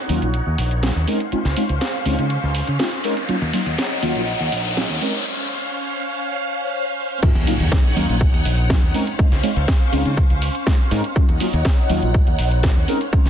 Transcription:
Already playing: D#4 C#5 F#5, riser
0.09 D#2 F#3 A#3 C#4 D#4 F4, open hi-hat
0.22 A#1 F#3 A#3 C#4 D#4 F4, closed hi-hat
0.34 closed hi-hat
0.47 D#2
0.58 A#1, open hi-hat
0.71 closed hi-hat
0.83 F#3 A#3 C#4 D#4 F4, snare, closed hi-hat
0.96 D#2
1.07 G#3 C4 C#4 D#4 A#4 C5 F5, open hi-hat
1.20 closed hi-hat
1.32 G#3 C4 C#4 D#4 F4, muted fingered electric bass stroke, closed hi-hat
1.45 C#2, snare
1.56 G#3 C4 C#4 D#4 F4, open hi-hat
1.69 C#2, closed hi-hat
1.81 snare, closed hi-hat
2.05 C#2 G#3 C4 C#4 D#4 F4, open hi-hat
2.18 C#3 G#3 C4 C#4 D#4 F4, closed hi-hat
2.30 closed hi-hat
2.43 C#2
2.55 open hi-hat
2.67 C#3, closed hi-hat
2.79 G#3 C4 C#4 D#4 F4, snare, closed hi-hat
3.04 G#3 C4 C#4 D#4 A#4, open hi-hat
3.17 closed hi-hat
3.28 F#3 A#3 C#4 D#4 F4 C#5 F#5, muted fingered electric bass stroke, closed hi-hat
3.42 D#2
3.53 F#3 A#3 C#4 D#4 F4, open hi-hat
3.66 D#2, closed hi-hat
3.78 snare, closed hi-hat
4.02 D#2 F#3 A#3 C#4 D#4 F4, open hi-hat
4.15 A#1 F#3 A#3 C#4 F4, closed hi-hat
4.27 closed hi-hat
4.40 D#2
4.52 A#1, open hi-hat
4.65 closed hi-hat
4.76 F#3 A#3 C#4 D#4 F4, snare, closed hi-hat
4.89 D#2
5.01 G#3 C4 C#4 D#4 A#4 C5 F5, open hi-hat
5.14 closed hi-hat
7.22 F#3 A#3 C#4 D#4 F4 C#5 F#5, muted fingered electric bass stroke, kick, closed hi-hat, crash, impact, shaker
7.35 D#2, closed hi-hat, shaker
7.47 F#3 A#3 C#4 D#4 F4, open hi-hat, shaker
7.60 D#2, closed hi-hat, shaker
7.72 kick, snare, closed hi-hat, shaker
7.84 shaker
7.95 D#2 F#3 A#3 C#4 D#4 F4, open hi-hat, shaker
8.08 A#1 F#3 A#3 C#4 D#4 F4, closed hi-hat, shaker
8.21 kick, closed hi-hat, shaker
8.33 D#2, closed hi-hat, shaker
8.45 A#1, open hi-hat, shaker
8.58 closed hi-hat, shaker
8.69 F#3 A#3 C#4 D#4 F4, kick, snare, closed hi-hat, shaker
8.82 D#2, shaker
8.94 G#3 C4 C#4 D#4 A#4 C5 F5, open hi-hat, shaker
9.07 closed hi-hat, shaker
9.18 G#3 C4 C#4 D#4 F4, muted fingered electric bass stroke, kick, closed hi-hat, shaker
9.32 C#2, snare, closed hi-hat, shaker
9.43 G#3 C4 C#4 D#4 F4, open hi-hat, shaker
9.55 C#2, closed hi-hat, shaker
9.68 kick, snare, closed hi-hat, shaker
9.80 shaker
9.92 C#2 G#3 C4 C#4 D#4 F4, open hi-hat, shaker
10.05 C#3 G#3 C4 C#4 D#4 F4, closed hi-hat, shaker
10.17 kick, closed hi-hat, shaker
10.30 C#2, closed hi-hat, shaker
10.42 open hi-hat, shaker
10.54 closed hi-hat, shaker
10.66 G#3 C4 C#4 D#4 F4, kick, snare, closed hi-hat, shaker
10.80 shaker
10.90 G#2 G#3 C4 C#4 D#4 A#4, open hi-hat, shaker
11.04 closed hi-hat, shaker
11.15 F#3 A#3 C#4 D#4 F4 C#5 F#5, muted fingered electric bass stroke, kick, closed hi-hat, shaker
11.28 D#2, closed hi-hat, shaker
11.40 F#3 A#3 C#4 D#4 F4, open hi-hat, shaker
11.53 D#2, closed hi-hat, shaker
11.65 kick, snare, closed hi-hat, shaker
11.78 shaker
11.89 D#2 F#3 A#3 C#4 D#4 F4, open hi-hat, shaker
12.02 A#1 F#3 A#3 C#4 D#4 F4, closed hi-hat, shaker
12.14 kick, closed hi-hat, shaker
12.27 D#2, closed hi-hat, shaker
12.38 A#1, open hi-hat, shaker
12.51 closed hi-hat, shaker
12.63 F#3 A#3 C#4 D#4 F4, kick, snare, closed hi-hat, shaker
12.76 D#2, shaker
12.87 G#3 C4 C#4 D#4 A#4 C5 F5, open hi-hat, shaker
13.01 closed hi-hat, shaker
13.12 G#3 C4 C#4 D#4 F4, muted fingered electric bass stroke, kick, closed hi-hat, shaker
13.25 C#2, snare, closed hi-hat, shaker

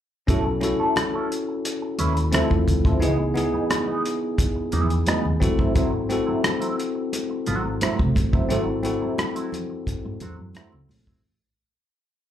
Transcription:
0.27 B1 C#4 E4 F#4 A4, kick, closed hi-hat, muted conga
0.46 muted clean electric guitar stroke
0.61 C#4 E4 F#4 A4, muted clean electric guitar stroke, closed hi-hat, muted conga
0.80 C#4 E4 A4, muted fingered electric bass stroke
0.96 cross-stick, closed hi-hat, high conga
1.14 C#4 E4 A4
1.31 muted clean electric guitar stroke, closed hi-hat
1.49 muted clean electric guitar stroke
1.65 muted clean electric guitar stroke, closed hi-hat
1.82 muted clean electric guitar stroke
1.99 D#2 C#4 E4 B4, closed hi-hat, muted conga
2.16 muted clean electric guitar stroke, closed hi-hat
2.32 D2 F3 C4 E4 F4 A4, cross-stick, closed hi-hat, high conga
2.50 E2, kick, high conga
2.68 D2, muted clean electric guitar stroke, kick, closed hi-hat, high conga
2.85 F3 C4 E4, kick, cross-stick
3.00 C#2 E3 B3 D#4 E4 G#4, closed hi-hat, muted conga
3.19 muted clean electric guitar stroke
3.34 B3 D#4 E4 G#4, muted clean electric guitar stroke, closed hi-hat, muted conga
3.53 E3 B3 D#4, muted fingered electric bass stroke
3.70 muted clean electric guitar stroke, cross-stick, closed hi-hat, high conga
3.87 E3 B3 D#4
4.04 muted clean electric guitar stroke, closed hi-hat
4.21 muted clean electric guitar stroke
4.38 muted clean electric guitar stroke, kick, closed hi-hat
4.55 muted clean electric guitar stroke
4.72 E2 E3 B3 E4, closed hi-hat, muted conga, low conga
4.90 muted clean electric guitar stroke, closed hi-hat
5.07 E3 B3 D#4, cross-stick, closed hi-hat, high conga
5.25 D#2, high conga
5.40 G#1 C4 E4 F#4 A4, muted clean electric guitar stroke, kick, closed hi-hat, high conga
5.59 F#3 C4 E4, kick
5.75 F#3 C4 E4, kick, closed hi-hat, muted conga
5.93 muted clean electric guitar stroke
6.09 C4 E4 F#4 A4, muted clean electric guitar stroke, closed hi-hat, muted conga
6.26 F#3 C4 E4, muted fingered electric bass stroke
6.43 muted clean electric guitar stroke, cross-stick, closed hi-hat, high conga
6.60 F#3 C4 E4, closed hi-hat
6.78 muted clean electric guitar stroke, closed hi-hat
6.95 muted clean electric guitar stroke
7.13 muted clean electric guitar stroke, closed hi-hat, muted conga
7.30 muted clean electric guitar stroke
7.46 G#1 F#3 C4 F#4, closed hi-hat, muted conga
7.64 muted clean electric guitar stroke
7.81 F#3 C4 E4, cross-stick, closed hi-hat, high conga
7.99 C2, kick, high conga
8.16 A1, muted clean electric guitar stroke, kick, closed hi-hat, high conga
8.33 F#3 C4 E4, kick
8.49 G#1 F#3 C4 E4 F#4 A4, closed hi-hat, muted conga
8.67 muted clean electric guitar stroke
8.83 C4 E4 F#4 A4, muted clean electric guitar stroke, closed hi-hat, muted conga
9.01 F#3 C4 E4, muted fingered electric bass stroke
9.18 cross-stick, closed hi-hat, high conga
9.35 F#3 C4 E4, closed hi-hat
9.52 muted clean electric guitar stroke, closed hi-hat, low conga
9.70 muted clean electric guitar stroke
9.87 muted clean electric guitar stroke, kick, closed hi-hat
10.05 G#2, muted clean electric guitar stroke
10.20 E2 F#3 C4 F#4, closed hi-hat, muted conga, low conga
10.39 F#2, muted clean electric guitar stroke
10.55 F#3 C4 E4, cross-stick, closed hi-hat, high conga
10.72 C#2, high conga
10.89 A#1, muted clean electric guitar stroke, open hi-hat, high conga
11.07 A1 F#3 C4 E4, kick

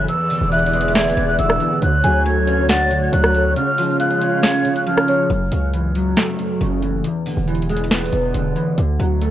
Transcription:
0.08 E2 E3 B3 G#4 D5 E6, closed hi-hat
0.30 D3, open hi-hat
0.41 E1
0.51 E3 E5 F#6, closed hi-hat
0.59 closed hi-hat
0.66 closed hi-hat
0.73 G#3, closed hi-hat
0.81 closed hi-hat
0.88 closed hi-hat
0.95 B3 G#6, snare
1.03 closed hi-hat
1.10 closed hi-hat
1.17 E1 E2, closed hi-hat
1.28 F#6
1.39 E1 D3 E6, closed hi-hat
1.50 cross-stick
1.60 E3, closed hi-hat
1.82 D2 D3 A3 F#4 C#5 F#6, closed hi-hat
2.04 D2 F#3 G#5, closed hi-hat
2.26 A3 G#6, closed hi-hat
2.47 C#4, closed hi-hat
2.69 F#5 A6, snare, closed hi-hat
2.91 D3, closed hi-hat
3.02 G#6
3.13 D2 F#3 F#6, closed hi-hat
3.24 cross-stick
3.34 A3, closed hi-hat
3.56 C#3 G#3 F4 F6, closed hi-hat
3.78 F3, open hi-hat
4.00 G#3 F5 F#6, closed hi-hat
4.11 closed hi-hat
4.21 C#4, closed hi-hat
4.43 C#5 G#6, snare, closed hi-hat
4.64 C#3, closed hi-hat
4.76 F#6, closed hi-hat
4.86 F3 F6, closed hi-hat
4.98 cross-stick
5.08 G#3 C#5, closed hi-hat
5.30 F#1 F#2, closed hi-hat
5.52 C#2 C#3, closed hi-hat
5.74 E3, closed hi-hat
5.95 F#3, closed hi-hat
6.17 A3, snare, closed hi-hat
6.39 F#2, closed hi-hat
6.61 F#1 C#3, closed hi-hat
6.81 E3, closed hi-hat
7.04 E2, closed hi-hat
7.26 D3, open hi-hat
7.37 E1
7.47 E3, closed hi-hat
7.55 closed hi-hat
7.62 closed hi-hat
7.69 G#3, closed hi-hat
7.76 closed hi-hat
7.84 closed hi-hat
7.91 B3, snare, closed hi-hat
7.98 closed hi-hat
8.05 closed hi-hat
8.13 E1 E2, closed hi-hat
8.34 E1 D3, closed hi-hat
8.56 E3, closed hi-hat
8.78 D2 D3, closed hi-hat
9.00 D2 F#3, closed hi-hat
9.22 A3, closed hi-hat

